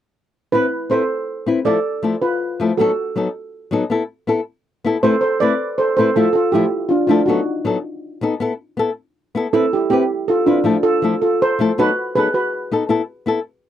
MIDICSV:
0, 0, Header, 1, 4, 480
1, 0, Start_track
1, 0, Key_signature, 0, "minor"
1, 0, Tempo, 374766
1, 684, Time_signature, 12, 3, 24, 8
1, 17539, End_track
2, 0, Start_track
2, 0, Title_t, "Steel pan"
2, 0, Program_c, 0, 114
2, 670, Note_on_c, 0, 71, 83
2, 678, Note_on_c, 0, 64, 59
2, 1123, Note_off_c, 0, 71, 0
2, 1127, Note_off_c, 0, 64, 0
2, 1164, Note_on_c, 0, 72, 80
2, 1175, Note_on_c, 0, 69, 60
2, 2078, Note_off_c, 0, 69, 0
2, 2118, Note_on_c, 0, 74, 79
2, 2123, Note_on_c, 0, 69, 70
2, 2153, Note_off_c, 0, 72, 0
2, 2793, Note_off_c, 0, 69, 0
2, 2838, Note_on_c, 0, 71, 69
2, 2847, Note_on_c, 0, 65, 50
2, 2863, Note_off_c, 0, 74, 0
2, 3515, Note_off_c, 0, 65, 0
2, 3554, Note_on_c, 0, 69, 76
2, 3560, Note_on_c, 0, 66, 57
2, 3583, Note_off_c, 0, 71, 0
2, 4951, Note_off_c, 0, 66, 0
2, 5428, Note_off_c, 0, 69, 0
2, 6442, Note_on_c, 0, 72, 91
2, 6459, Note_on_c, 0, 69, 73
2, 6656, Note_off_c, 0, 72, 0
2, 6672, Note_on_c, 0, 72, 80
2, 6675, Note_off_c, 0, 69, 0
2, 6698, Note_on_c, 0, 69, 61
2, 6915, Note_off_c, 0, 69, 0
2, 6920, Note_on_c, 0, 74, 94
2, 6925, Note_off_c, 0, 72, 0
2, 6939, Note_on_c, 0, 71, 72
2, 7368, Note_off_c, 0, 74, 0
2, 7378, Note_off_c, 0, 71, 0
2, 7403, Note_on_c, 0, 72, 77
2, 7422, Note_on_c, 0, 69, 61
2, 7627, Note_off_c, 0, 72, 0
2, 7637, Note_off_c, 0, 69, 0
2, 7642, Note_on_c, 0, 72, 89
2, 7661, Note_on_c, 0, 69, 67
2, 7873, Note_off_c, 0, 69, 0
2, 7888, Note_on_c, 0, 69, 80
2, 7890, Note_off_c, 0, 72, 0
2, 7904, Note_on_c, 0, 65, 62
2, 8090, Note_off_c, 0, 69, 0
2, 8106, Note_on_c, 0, 69, 77
2, 8118, Note_off_c, 0, 65, 0
2, 8137, Note_on_c, 0, 65, 64
2, 8218, Note_off_c, 0, 69, 0
2, 8242, Note_off_c, 0, 65, 0
2, 8352, Note_on_c, 0, 67, 75
2, 8381, Note_on_c, 0, 64, 61
2, 8819, Note_off_c, 0, 64, 0
2, 8821, Note_on_c, 0, 65, 68
2, 8848, Note_on_c, 0, 62, 52
2, 8852, Note_off_c, 0, 67, 0
2, 9042, Note_off_c, 0, 65, 0
2, 9057, Note_on_c, 0, 65, 75
2, 9069, Note_off_c, 0, 62, 0
2, 9082, Note_on_c, 0, 62, 60
2, 9292, Note_off_c, 0, 65, 0
2, 9296, Note_on_c, 0, 66, 74
2, 9306, Note_off_c, 0, 62, 0
2, 9319, Note_on_c, 0, 63, 58
2, 9978, Note_off_c, 0, 66, 0
2, 9990, Note_off_c, 0, 63, 0
2, 12208, Note_on_c, 0, 69, 79
2, 12209, Note_on_c, 0, 64, 68
2, 12428, Note_off_c, 0, 64, 0
2, 12452, Note_off_c, 0, 69, 0
2, 12465, Note_on_c, 0, 67, 66
2, 12482, Note_on_c, 0, 64, 53
2, 12664, Note_off_c, 0, 67, 0
2, 12675, Note_off_c, 0, 64, 0
2, 12679, Note_on_c, 0, 67, 78
2, 12691, Note_on_c, 0, 64, 58
2, 13133, Note_off_c, 0, 64, 0
2, 13168, Note_on_c, 0, 69, 77
2, 13174, Note_off_c, 0, 67, 0
2, 13189, Note_on_c, 0, 65, 63
2, 13386, Note_off_c, 0, 65, 0
2, 13388, Note_off_c, 0, 69, 0
2, 13402, Note_on_c, 0, 65, 76
2, 13404, Note_on_c, 0, 62, 64
2, 13848, Note_off_c, 0, 65, 0
2, 13849, Note_off_c, 0, 62, 0
2, 13873, Note_on_c, 0, 69, 85
2, 13877, Note_on_c, 0, 65, 71
2, 14325, Note_off_c, 0, 65, 0
2, 14351, Note_off_c, 0, 69, 0
2, 14366, Note_on_c, 0, 69, 72
2, 14376, Note_on_c, 0, 65, 55
2, 14587, Note_off_c, 0, 69, 0
2, 14592, Note_off_c, 0, 65, 0
2, 14627, Note_on_c, 0, 72, 91
2, 14628, Note_on_c, 0, 69, 63
2, 15061, Note_off_c, 0, 69, 0
2, 15061, Note_off_c, 0, 72, 0
2, 15098, Note_on_c, 0, 66, 74
2, 15107, Note_on_c, 0, 71, 93
2, 15536, Note_off_c, 0, 66, 0
2, 15541, Note_off_c, 0, 71, 0
2, 15567, Note_on_c, 0, 68, 62
2, 15568, Note_on_c, 0, 71, 83
2, 15674, Note_off_c, 0, 68, 0
2, 15674, Note_off_c, 0, 71, 0
2, 15805, Note_on_c, 0, 66, 50
2, 15812, Note_on_c, 0, 71, 71
2, 16472, Note_off_c, 0, 66, 0
2, 17194, Note_off_c, 0, 71, 0
2, 17539, End_track
3, 0, Start_track
3, 0, Title_t, "Nylon-string guitar"
3, 0, Program_c, 1, 24
3, 683, Note_on_c, 1, 60, 53
3, 696, Note_on_c, 1, 64, 60
3, 705, Note_on_c, 1, 71, 66
3, 827, Note_off_c, 1, 60, 0
3, 834, Note_off_c, 1, 64, 0
3, 838, Note_off_c, 1, 71, 0
3, 1148, Note_on_c, 1, 60, 50
3, 1168, Note_on_c, 1, 64, 50
3, 1183, Note_on_c, 1, 71, 51
3, 1300, Note_off_c, 1, 60, 0
3, 1310, Note_off_c, 1, 64, 0
3, 1317, Note_off_c, 1, 71, 0
3, 1875, Note_on_c, 1, 60, 51
3, 1888, Note_on_c, 1, 64, 54
3, 1897, Note_on_c, 1, 71, 55
3, 2024, Note_off_c, 1, 60, 0
3, 2030, Note_off_c, 1, 64, 0
3, 2035, Note_off_c, 1, 71, 0
3, 2110, Note_on_c, 1, 53, 52
3, 2124, Note_on_c, 1, 57, 59
3, 2130, Note_on_c, 1, 69, 60
3, 2132, Note_on_c, 1, 64, 49
3, 2261, Note_off_c, 1, 53, 0
3, 2268, Note_off_c, 1, 57, 0
3, 2271, Note_off_c, 1, 69, 0
3, 2272, Note_off_c, 1, 64, 0
3, 2594, Note_on_c, 1, 53, 51
3, 2597, Note_on_c, 1, 57, 52
3, 2612, Note_on_c, 1, 64, 58
3, 2616, Note_on_c, 1, 69, 55
3, 2743, Note_off_c, 1, 53, 0
3, 2744, Note_off_c, 1, 57, 0
3, 2752, Note_off_c, 1, 64, 0
3, 2754, Note_off_c, 1, 69, 0
3, 3326, Note_on_c, 1, 53, 56
3, 3339, Note_on_c, 1, 57, 62
3, 3344, Note_on_c, 1, 64, 52
3, 3355, Note_on_c, 1, 69, 60
3, 3469, Note_off_c, 1, 53, 0
3, 3475, Note_off_c, 1, 57, 0
3, 3478, Note_off_c, 1, 64, 0
3, 3484, Note_off_c, 1, 69, 0
3, 3576, Note_on_c, 1, 54, 65
3, 3586, Note_on_c, 1, 59, 62
3, 3591, Note_on_c, 1, 63, 61
3, 3599, Note_on_c, 1, 69, 74
3, 3714, Note_off_c, 1, 54, 0
3, 3719, Note_off_c, 1, 59, 0
3, 3722, Note_off_c, 1, 63, 0
3, 3726, Note_off_c, 1, 69, 0
3, 4042, Note_on_c, 1, 54, 49
3, 4051, Note_on_c, 1, 59, 57
3, 4064, Note_on_c, 1, 63, 52
3, 4070, Note_on_c, 1, 69, 62
3, 4187, Note_off_c, 1, 54, 0
3, 4191, Note_off_c, 1, 59, 0
3, 4198, Note_off_c, 1, 63, 0
3, 4201, Note_off_c, 1, 69, 0
3, 4751, Note_on_c, 1, 54, 57
3, 4766, Note_on_c, 1, 59, 59
3, 4776, Note_on_c, 1, 63, 64
3, 4778, Note_on_c, 1, 69, 68
3, 4902, Note_off_c, 1, 54, 0
3, 4909, Note_off_c, 1, 59, 0
3, 4914, Note_off_c, 1, 63, 0
3, 4915, Note_off_c, 1, 69, 0
3, 4992, Note_on_c, 1, 59, 61
3, 5008, Note_on_c, 1, 64, 71
3, 5015, Note_on_c, 1, 69, 67
3, 5142, Note_off_c, 1, 59, 0
3, 5150, Note_off_c, 1, 64, 0
3, 5153, Note_off_c, 1, 69, 0
3, 5471, Note_on_c, 1, 59, 57
3, 5485, Note_on_c, 1, 64, 65
3, 5493, Note_on_c, 1, 69, 65
3, 5622, Note_off_c, 1, 59, 0
3, 5628, Note_off_c, 1, 64, 0
3, 5633, Note_off_c, 1, 69, 0
3, 6206, Note_on_c, 1, 59, 67
3, 6222, Note_on_c, 1, 64, 67
3, 6234, Note_on_c, 1, 69, 66
3, 6349, Note_off_c, 1, 59, 0
3, 6357, Note_off_c, 1, 64, 0
3, 6363, Note_off_c, 1, 69, 0
3, 6440, Note_on_c, 1, 57, 55
3, 6441, Note_on_c, 1, 60, 58
3, 6453, Note_on_c, 1, 64, 70
3, 6462, Note_on_c, 1, 71, 62
3, 6586, Note_off_c, 1, 57, 0
3, 6587, Note_off_c, 1, 60, 0
3, 6592, Note_off_c, 1, 64, 0
3, 6597, Note_off_c, 1, 71, 0
3, 6930, Note_on_c, 1, 57, 47
3, 6938, Note_on_c, 1, 60, 53
3, 6945, Note_on_c, 1, 64, 55
3, 6951, Note_on_c, 1, 71, 59
3, 7071, Note_off_c, 1, 57, 0
3, 7075, Note_off_c, 1, 60, 0
3, 7078, Note_off_c, 1, 64, 0
3, 7081, Note_off_c, 1, 71, 0
3, 7661, Note_on_c, 1, 57, 47
3, 7673, Note_on_c, 1, 60, 50
3, 7674, Note_on_c, 1, 64, 57
3, 7684, Note_on_c, 1, 71, 55
3, 7796, Note_off_c, 1, 57, 0
3, 7802, Note_off_c, 1, 60, 0
3, 7803, Note_off_c, 1, 64, 0
3, 7808, Note_off_c, 1, 71, 0
3, 7888, Note_on_c, 1, 53, 51
3, 7891, Note_on_c, 1, 57, 58
3, 7899, Note_on_c, 1, 64, 58
3, 7910, Note_on_c, 1, 69, 58
3, 8030, Note_off_c, 1, 53, 0
3, 8031, Note_off_c, 1, 57, 0
3, 8035, Note_off_c, 1, 64, 0
3, 8041, Note_off_c, 1, 69, 0
3, 8369, Note_on_c, 1, 53, 54
3, 8385, Note_on_c, 1, 57, 55
3, 8385, Note_on_c, 1, 64, 63
3, 8510, Note_off_c, 1, 53, 0
3, 8518, Note_off_c, 1, 57, 0
3, 8518, Note_off_c, 1, 64, 0
3, 9073, Note_on_c, 1, 53, 56
3, 9083, Note_on_c, 1, 57, 59
3, 9088, Note_on_c, 1, 64, 63
3, 9102, Note_on_c, 1, 69, 63
3, 9222, Note_off_c, 1, 53, 0
3, 9227, Note_off_c, 1, 57, 0
3, 9230, Note_off_c, 1, 64, 0
3, 9237, Note_off_c, 1, 69, 0
3, 9323, Note_on_c, 1, 54, 56
3, 9333, Note_on_c, 1, 59, 60
3, 9337, Note_on_c, 1, 63, 67
3, 9342, Note_on_c, 1, 69, 71
3, 9467, Note_off_c, 1, 54, 0
3, 9472, Note_off_c, 1, 59, 0
3, 9474, Note_off_c, 1, 63, 0
3, 9476, Note_off_c, 1, 69, 0
3, 9793, Note_on_c, 1, 54, 54
3, 9796, Note_on_c, 1, 59, 61
3, 9805, Note_on_c, 1, 63, 61
3, 9820, Note_on_c, 1, 69, 61
3, 9942, Note_off_c, 1, 54, 0
3, 9943, Note_off_c, 1, 59, 0
3, 9948, Note_off_c, 1, 63, 0
3, 9955, Note_off_c, 1, 69, 0
3, 10531, Note_on_c, 1, 59, 58
3, 10541, Note_on_c, 1, 63, 67
3, 10549, Note_on_c, 1, 69, 67
3, 10671, Note_off_c, 1, 59, 0
3, 10675, Note_off_c, 1, 63, 0
3, 10679, Note_off_c, 1, 69, 0
3, 10759, Note_on_c, 1, 59, 64
3, 10774, Note_on_c, 1, 64, 72
3, 10786, Note_on_c, 1, 69, 69
3, 10905, Note_off_c, 1, 59, 0
3, 10912, Note_off_c, 1, 64, 0
3, 10918, Note_off_c, 1, 69, 0
3, 11231, Note_on_c, 1, 59, 55
3, 11259, Note_on_c, 1, 64, 56
3, 11262, Note_on_c, 1, 69, 68
3, 11381, Note_off_c, 1, 59, 0
3, 11395, Note_off_c, 1, 64, 0
3, 11396, Note_off_c, 1, 69, 0
3, 11973, Note_on_c, 1, 59, 63
3, 11986, Note_on_c, 1, 64, 66
3, 12003, Note_on_c, 1, 69, 65
3, 12111, Note_off_c, 1, 59, 0
3, 12118, Note_off_c, 1, 64, 0
3, 12126, Note_off_c, 1, 69, 0
3, 12213, Note_on_c, 1, 60, 67
3, 12217, Note_on_c, 1, 64, 70
3, 12224, Note_on_c, 1, 71, 71
3, 12351, Note_off_c, 1, 60, 0
3, 12353, Note_off_c, 1, 64, 0
3, 12357, Note_off_c, 1, 71, 0
3, 12681, Note_on_c, 1, 60, 60
3, 12703, Note_on_c, 1, 64, 55
3, 12719, Note_on_c, 1, 71, 61
3, 12825, Note_off_c, 1, 60, 0
3, 12836, Note_off_c, 1, 64, 0
3, 12844, Note_off_c, 1, 71, 0
3, 13406, Note_on_c, 1, 60, 48
3, 13413, Note_on_c, 1, 64, 53
3, 13422, Note_on_c, 1, 71, 54
3, 13547, Note_off_c, 1, 60, 0
3, 13551, Note_off_c, 1, 64, 0
3, 13556, Note_off_c, 1, 71, 0
3, 13625, Note_on_c, 1, 53, 55
3, 13634, Note_on_c, 1, 57, 58
3, 13637, Note_on_c, 1, 64, 61
3, 13650, Note_on_c, 1, 69, 62
3, 13777, Note_off_c, 1, 53, 0
3, 13781, Note_off_c, 1, 57, 0
3, 13783, Note_off_c, 1, 64, 0
3, 13789, Note_off_c, 1, 69, 0
3, 14115, Note_on_c, 1, 53, 51
3, 14134, Note_on_c, 1, 57, 55
3, 14142, Note_on_c, 1, 64, 51
3, 14147, Note_on_c, 1, 69, 57
3, 14262, Note_off_c, 1, 53, 0
3, 14271, Note_off_c, 1, 57, 0
3, 14275, Note_off_c, 1, 64, 0
3, 14278, Note_off_c, 1, 69, 0
3, 14841, Note_on_c, 1, 53, 55
3, 14853, Note_on_c, 1, 57, 60
3, 14863, Note_on_c, 1, 64, 60
3, 14871, Note_on_c, 1, 69, 67
3, 14984, Note_off_c, 1, 53, 0
3, 14990, Note_off_c, 1, 57, 0
3, 14995, Note_off_c, 1, 64, 0
3, 15000, Note_off_c, 1, 69, 0
3, 15089, Note_on_c, 1, 54, 60
3, 15099, Note_on_c, 1, 63, 73
3, 15101, Note_on_c, 1, 59, 73
3, 15106, Note_on_c, 1, 69, 74
3, 15228, Note_off_c, 1, 54, 0
3, 15233, Note_off_c, 1, 63, 0
3, 15235, Note_off_c, 1, 59, 0
3, 15237, Note_off_c, 1, 69, 0
3, 15570, Note_on_c, 1, 54, 54
3, 15582, Note_on_c, 1, 59, 57
3, 15591, Note_on_c, 1, 63, 52
3, 15599, Note_on_c, 1, 69, 54
3, 15709, Note_off_c, 1, 54, 0
3, 15715, Note_off_c, 1, 59, 0
3, 15720, Note_off_c, 1, 63, 0
3, 15723, Note_off_c, 1, 69, 0
3, 16286, Note_on_c, 1, 59, 54
3, 16293, Note_on_c, 1, 63, 56
3, 16305, Note_on_c, 1, 69, 58
3, 16427, Note_off_c, 1, 59, 0
3, 16430, Note_off_c, 1, 63, 0
3, 16436, Note_off_c, 1, 69, 0
3, 16507, Note_on_c, 1, 59, 60
3, 16512, Note_on_c, 1, 64, 63
3, 16525, Note_on_c, 1, 69, 71
3, 16657, Note_off_c, 1, 59, 0
3, 16660, Note_off_c, 1, 64, 0
3, 16666, Note_off_c, 1, 69, 0
3, 16982, Note_on_c, 1, 59, 55
3, 16994, Note_on_c, 1, 64, 64
3, 17010, Note_on_c, 1, 69, 68
3, 17135, Note_off_c, 1, 59, 0
3, 17140, Note_off_c, 1, 64, 0
3, 17149, Note_off_c, 1, 69, 0
3, 17539, End_track
4, 0, Start_track
4, 0, Title_t, "Muted nylon-string guitar strokes"
4, 8397, Note_on_c, 9, 29, 59
4, 8525, Note_off_c, 9, 29, 0
4, 10519, Note_on_c, 9, 29, 55
4, 10647, Note_off_c, 9, 29, 0
4, 17539, End_track
0, 0, End_of_file